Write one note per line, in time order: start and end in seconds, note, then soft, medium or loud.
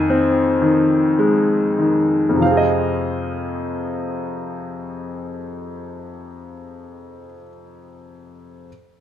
0.00 2.28 F2 medium
0.00 0.60 D#3 soft
0.00 1.17 D#5 medium
0.00 1.17 G#5 medium
0.10 2.38 C4 soft
0.62 1.77 D#3 soft
1.19 2.38 G#3 soft
1.79 2.40 D#3 soft
2.29 7.20 F2 soft
2.34 7.25 C3 soft
2.40 7.30 F3 soft
2.40 7.33 F5 soft
2.45 7.36 C4 soft
2.51 7.42 G#4 soft
2.57 7.48 D#5 soft